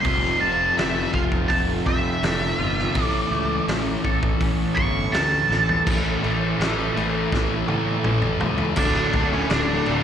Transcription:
0.01 distorted electric guitar F2 C3, clean electric guitar F2, lead electric guitar C6, kick, open hi-hat
0.05 fingered electric bass F1, distorted electric guitar F3
0.25 snare
0.41 fingered electric bass F1, clean electric guitar F3, lead electric guitar A5
0.77 fingered electric bass F1, clean electric guitar A3, lead electric guitar E5, snare, open hi-hat
1.13 fingered electric bass F1, clean electric guitar F4, lead electric guitar F5, kick
1.32 kick
1.48 fingered electric bass F1, clean electric guitar A3, lead electric guitar A5, kick, open hi-hat
1.86 fingered electric bass F2, clean electric guitar C4, lead electric guitar E5, kick
2.23 fingered electric bass F1, clean electric guitar A3, snare, open hi-hat
2.59 fingered electric bass G1, clean electric guitar F4
2.79 snare
2.95 fingered electric bass A1, distorted electric guitar A2 E3, clean electric guitar A2, kick, open hi-hat
2.99 distorted electric guitar A3
3.03 lead electric guitar D5
3.31 fingered electric bass C#2, clean electric guitar A3
3.68 fingered electric bass A1, clean electric guitar C#4, snare, open hi-hat
4.04 fingered electric bass A1, clean electric guitar A4, kick
4.23 kick
4.40 fingered electric bass A1, clean electric guitar C#4, kick, open hi-hat
4.76 fingered electric bass G1, clean electric guitar E4, lead electric guitar C#6, kick
5.12 fingered electric bass D2, clean electric guitar C#4, lead electric guitar A5, snare, open hi-hat
5.49 fingered electric bass A1, clean electric guitar A4, snare
5.69 floor tom
5.86 fingered electric bass A1, distorted electric guitar A2 E3 A3, tonewheel organ A3 E4 C#5, kick, crash
6.22 fingered electric bass A1, distorted electric guitar A2 E3 A3, crash
6.59 fingered electric bass A1, distorted electric guitar A2 E3 A3, snare, crash
6.97 fingered electric bass A1, distorted electric guitar A2 E3 A3, crash
7.32 fingered electric bass A1, distorted electric guitar A2 E3 A3, kick, snare
7.68 distorted electric guitar A2 E3 A3, fingered electric bass A2, high tom
8.04 fingered electric bass A1, distorted electric guitar A2 E3 A3, mid tom
8.22 mid tom
8.41 fingered electric bass C#2, distorted electric guitar A2 E3 A3, floor tom
8.58 floor tom
8.76 fingered electric bass D1, distorted electric guitar D2 A2 D3, tonewheel organ D3 A3 F#4, lead electric guitar D4 D5, kick, crash
9.13 fingered electric bass D1, distorted electric guitar D2 A2 D3, kick, crash
9.33 lead electric guitar C#4 C#5
9.49 fingered electric bass D1, distorted electric guitar D2 A2 D3, lead electric guitar D4 D5, snare, crash
9.86 fingered electric bass D1, distorted electric guitar D2 A2 D3, crash

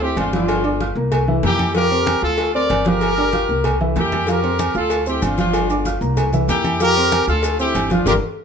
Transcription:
Already playing: upright bass D2
0.01 grand piano C4 C5 C6, horn section E4 G4, high conga
0.17 upright bass G1, horn section D4 F4, cowbell, high conga, low timbale, low agogo
0.33 grand piano F3 F4 F5, horn section D4 F4, cowbell, high conga
0.48 cowbell, high conga, low agogo
0.64 grand piano D4 D5 D6, high conga, low agogo
0.80 grand piano F4 F5 F6, cowbell, high conga
0.95 upright bass C2, grand piano A#3 A#4 A#5, high conga
1.12 cowbell, high conga, low conga, low agogo
1.28 grand piano E3 E4 E5, high conga
1.43 upright bass F2, grand piano A#3 A#4 A#5, horn section E4 G4, cowbell, high conga, low timbale, low agogo
1.59 high conga, low agogo
1.75 grand piano F3 F4 F5, horn section G4 A#4, cowbell, high conga, low agogo
1.91 grand piano C4 C5 C6, high conga, low agogo
2.06 cowbell, high conga, low agogo
2.22 upright bass D2, grand piano F4 F5 F6, horn section F4 A4
2.38 cowbell, high conga, low agogo
2.54 grand piano C4 C5 C6, horn section A#4 D5, high conga
2.70 upright bass G1, cowbell, high conga, low timbale, low agogo
2.85 grand piano F3 F4 F5, horn section G4 A#4, cowbell, high conga
3.01 cowbell, high conga, low agogo
3.17 grand piano D4 D5 D6, high conga, low agogo
3.33 grand piano F4 F5 F6, cowbell, high conga
3.49 upright bass C2, grand piano A#3 A#4 A#5, high conga
3.64 cowbell, high conga, low conga, low agogo
3.81 grand piano E3 E4 E5, high conga, high timbale
3.96 upright bass F2, grand piano A#3 A#4 A#5, horn section E4 G4, cowbell, high conga, low timbale, low agogo
4.12 high conga, low timbale, low agogo
4.27 grand piano F3 F4 F5, horn section G4 A#4, cowbell, high conga, low agogo, maracas
4.43 grand piano C4 C5 C6, high conga, low agogo
4.59 cowbell, high conga, low agogo, maracas
4.75 upright bass D2, grand piano F4 F5 F6, horn section F4 A4, maracas
4.90 cowbell, high conga, low agogo, maracas
5.06 grand piano C4 C5 C6, horn section E4 G4, high conga, maracas
5.22 upright bass G1, horn section D4 F4, cowbell, high conga, low agogo, maracas
5.38 grand piano F3 F4 F5, horn section D4 F4, cowbell, high conga, maracas
5.53 cowbell, high conga, low agogo, maracas
5.70 grand piano D4 D5 D6, high conga, low agogo, maracas
5.85 grand piano F4 F5 F6, cowbell, high conga, maracas
6.01 upright bass C2, grand piano A#3 A#4 A#5, high conga, maracas
6.17 cowbell, high conga, low conga, low agogo, maracas
6.33 grand piano E3 E4 E5, high conga, low conga, maracas
6.48 upright bass F2, grand piano A#3 A#4 A#5, horn section E4 G4, cowbell, high conga, low timbale, low agogo, maracas
6.64 high conga, low agogo, maracas
6.80 grand piano F3 F4 F5, horn section G4 A#4, cowbell, low agogo, maracas
6.96 grand piano C4 C5 C6, high conga, low agogo
7.11 cowbell, high conga, low agogo, maracas
7.27 upright bass D2, grand piano F4 F5 F6, horn section F4 A4, maracas
7.43 cowbell, high conga, low agogo, maracas
7.59 grand piano C4 C5 C6, horn section E4 G4, high conga, maracas
7.75 upright bass G1, cowbell, high conga, low agogo, maracas
7.90 grand piano F3 F4 F5, horn section D4 F4, cowbell, high conga, maracas
8.06 upright bass G1, horn section F4 G4 A#4, grand piano G4 A#4 D5, cowbell, high conga, high timbale, maracas

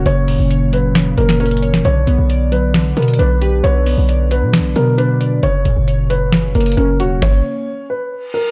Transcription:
Already playing: synth keys A#2 C#3 F#3 A#3 C#4 C#5
0.06 808-style bass F#1, synth keys C#3, grand piano C#5, closed hi-hat
0.28 synth keys A#2, open hi-hat
0.39 808-style bass F#1
0.51 synth keys C#5, closed hi-hat
0.73 synth keys F#3, grand piano B4, closed hi-hat
0.95 synth keys C#3, snare, closed hi-hat
1.18 808-style bass F#1, synth keys A#3, grand piano A#4, closed hi-hat
1.29 snare
1.40 synth keys C#4, grand piano A#4, closed hi-hat
1.46 closed hi-hat
1.51 closed hi-hat
1.57 closed hi-hat
1.62 synth keys C#5, closed hi-hat
1.74 snare
1.85 808-style bass B1, synth keys D3, grand piano C#5, closed hi-hat
2.07 808-style bass B1, synth keys B3, closed hi-hat
2.18 808-style bass B1
2.30 synth keys D5, closed hi-hat
2.52 synth keys F#3, grand piano B4, closed hi-hat
2.74 synth keys D3, snare, closed hi-hat
2.97 808-style bass B2, synth keys B3, grand piano A#4, closed hi-hat
3.02 closed hi-hat
3.08 closed hi-hat
3.14 closed hi-hat
3.19 808-style bass B1, synth keys D4, grand piano B4, closed hi-hat
3.41 grand piano G4, synth keys B4, closed hi-hat
3.64 808-style bass B1, synth keys D3, grand piano C#5, closed hi-hat
3.86 synth keys B3, open hi-hat
3.98 808-style bass B1
4.09 synth keys D5, closed hi-hat
4.31 synth keys F#3, grand piano B4, closed hi-hat
4.42 808-style bass B2
4.53 synth keys D3, snare, closed hi-hat
4.59 808-style bass B1
4.76 808-style bass B2, synth keys B3, grand piano A#4, closed hi-hat
4.98 synth keys D4, grand piano B4, closed hi-hat
5.21 synth keys D5, closed hi-hat
5.43 808-style bass F#1, synth keys C#3, grand piano C#5, closed hi-hat
5.65 808-style bass F#1, synth keys A#2, closed hi-hat
5.77 808-style bass F#1
5.88 synth keys C#5, closed hi-hat
6.10 synth keys F#3, grand piano B4, closed hi-hat
6.32 808-style bass G1, synth keys C#3, snare, closed hi-hat
6.44 808-style bass F#1
6.55 808-style bass F#1, synth keys A#3, grand piano A#4, closed hi-hat
6.61 closed hi-hat
6.66 closed hi-hat
6.72 closed hi-hat
6.77 808-style bass F#1, synth keys C#4, grand piano A#4, closed hi-hat
7.00 808-style bass E1, grand piano F#4, synth keys C#5, closed hi-hat
7.22 grand piano C#5, kick, snare
7.90 grand piano B4
8.12 reverse cymbal
8.34 grand piano A#4

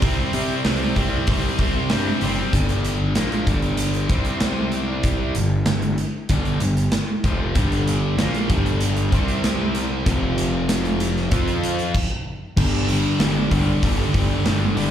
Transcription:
0.02 picked electric bass C2, distorted electric guitar C3 G3 C4, kick, open hi-hat
0.33 picked electric bass C3, distorted electric guitar C3 G3 C4, open hi-hat
0.65 picked electric bass C2, distorted electric guitar C3 G3 C4, snare, open hi-hat
0.96 picked electric bass C2, distorted electric guitar C3 G3 C4, kick, open hi-hat
1.27 picked electric bass C2, distorted electric guitar C3 G3 C4, kick, open hi-hat
1.58 picked electric bass C2, distorted electric guitar C3 G3 C4, kick, open hi-hat
1.90 picked electric bass G2, distorted electric guitar C3 G3 C4, snare, open hi-hat
2.21 picked electric bass F#1, distorted electric guitar C3 G3 C4, open hi-hat
2.53 picked electric bass G1, distorted electric guitar G2 D3 G3, kick, closed hi-hat
2.69 closed hi-hat
2.85 closed hi-hat
3.15 picked electric bass A#1, distorted electric guitar A#2 F3 A#3, snare, closed hi-hat
3.32 closed hi-hat
3.47 picked electric bass G1, distorted electric guitar G2 D3 G3, kick, closed hi-hat
3.62 closed hi-hat
3.77 closed hi-hat
3.94 closed hi-hat
4.09 picked electric bass C2, distorted electric guitar C3 G3 C4, kick, closed hi-hat
4.25 closed hi-hat
4.40 snare, closed hi-hat
4.72 closed hi-hat
5.03 kick, closed hi-hat
5.35 picked electric bass G1, distorted electric guitar G2 D3, closed hi-hat
5.66 picked electric bass G1, distorted electric guitar G2 D3, snare, closed hi-hat
5.82 closed hi-hat
5.98 closed hi-hat
6.29 picked electric bass G1, distorted electric guitar G2 D3 G3, kick, closed hi-hat
6.45 closed hi-hat
6.60 picked electric bass G1, distorted electric guitar G2 D3, closed hi-hat
6.77 closed hi-hat
6.92 snare, closed hi-hat
7.24 picked electric bass F1, distorted electric guitar F2 C3 F3, kick, closed hi-hat
7.55 picked electric bass G1, distorted electric guitar G2 D3 G3, kick, closed hi-hat
7.72 closed hi-hat
7.87 closed hi-hat
8.17 picked electric bass A#1, distorted electric guitar A#2 F3 A#3, snare, closed hi-hat
8.35 closed hi-hat
8.50 picked electric bass G1, distorted electric guitar G2 D3 G3, kick, closed hi-hat
8.66 closed hi-hat
8.81 closed hi-hat
8.97 closed hi-hat
9.12 picked electric bass C2, distorted electric guitar C3 G3 C4, kick, closed hi-hat
9.28 closed hi-hat
9.44 snare, closed hi-hat
9.75 closed hi-hat
10.06 picked electric bass F1, distorted electric guitar F2 C3 F3, kick, closed hi-hat
10.38 closed hi-hat
10.69 snare, closed hi-hat
10.85 closed hi-hat
11.00 closed hi-hat
11.16 snare
11.31 picked electric bass F2, distorted electric guitar F3 C4 F4, kick, closed hi-hat
11.48 closed hi-hat
11.64 closed hi-hat
11.79 closed hi-hat
11.94 kick, crash
12.57 picked electric bass G1, distorted electric guitar G2 D3 G3, kick, crash
12.89 distorted electric guitar G2 D3 G3, open hi-hat
13.19 picked electric bass G1, distorted electric guitar G2 D3 G3, snare, open hi-hat
13.51 picked electric bass G1, distorted electric guitar G2 D3 G3, kick, open hi-hat
13.82 picked electric bass G1, distorted electric guitar G2 D3 G3, kick, open hi-hat
14.13 picked electric bass G1, distorted electric guitar G2 D3 G3, kick, open hi-hat
14.45 picked electric bass G1, distorted electric guitar G2 D3 G3, snare, open hi-hat
14.75 picked electric bass G1, distorted electric guitar G2 D3 G3, open hi-hat

